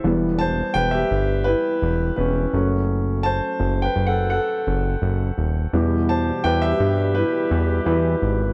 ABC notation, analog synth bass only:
X:1
M:4/4
L:1/16
Q:1/4=84
K:Em
V:1 name="Analog synth bass" clef=bass
E,,,4 E,,,2 G,,,3 z E,,,2 E,,,2 F,,,2- | F,,,4 F,,,2 F,,,3 z F,,,2 F,,,2 ^D,,,2 | E,,4 E,,2 G,,3 z E,,2 E,,2 ^G,,,2 |]